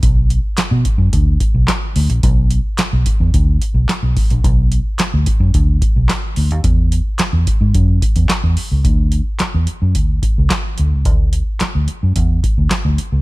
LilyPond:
<<
  \new Staff \with { instrumentName = "Fingered electric bass" } { \clef bass \time 4/4 \key b \dorian \tempo 4 = 109 b,,8. r8 b,16 r16 fis,16 d,8 r16 b,,16 r8 d,16 ais,,16 | b,,8. r8 b,,16 r16 e,16 d,8 r16 b,,16 r16 b,,16 r16 ais,,16 | b,,8. r8 d,16 r16 fis,16 d,8 r16 b,,16 r8 d,16 dis,16 | e,8. r8 e,16 r16 gis,16 fis,8 r16 e,16 r16 e,16 r16 cis,16 |
d,8. r8 e,16 r16 fis,16 d,8 r16 cis,16 r8 d,16 cis,16 | d,8. r8 d,16 r16 fis,16 e,8 r16 d,16 r16 d,16 r16 cis,16 | }
  \new DrumStaff \with { instrumentName = "Drums" } \drummode { \time 4/4 <hh bd>8 hh8 <hc hh sn>8 <hh bd>8 <hh bd>8 <hh bd>8 <hc hh sn>8 hho16 hh16 | <hh bd>8 hh8 <hc hh sn>8 <hh bd>8 <hh bd>8 hh8 <hc hh sn>8 <hho bd>16 hh16 | <hh bd>8 hh8 <hc hh sn>8 <hh bd>8 <hh bd>8 <hh bd>8 <hc hh sn>8 hho16 hh16 | <hh bd>8 hh8 <hc hh sn>8 <hh bd>8 <hh bd>8 <hh bd>16 hh16 <hc hh sn>8 hho8 |
<hh bd>8 hh8 <hc hh sn>8 hh8 <hh bd>8 <hh bd>8 <hc hh sn>8 hh8 | <hh bd>8 hh8 <hc hh sn>8 hh8 <hh bd>8 <hh bd>8 <hc hh sn>8 hh8 | }
>>